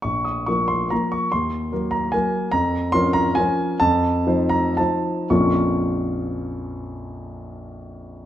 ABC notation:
X:1
M:3/4
L:1/8
Q:1/4=136
K:Bbm
V:1 name="Grand piano"
d' e' d' c' b d' | c'3 b a2 | b2 c' b a2 | =a3 b a2 |
[B,,,F,,F,B,DFd']6- | [B,,,F,,F,B,DFd']6 |]
V:2 name="Grand piano"
B,,,2 [F,B,B]2 [F,B,B]2 | E,,2 [G,B,B]2 [G,B,B]2 | F,,2 [F,DB]2 [F,DB]2 | F,,2 [F,Ec]2 [F,Ec]2 |
z6 | z6 |]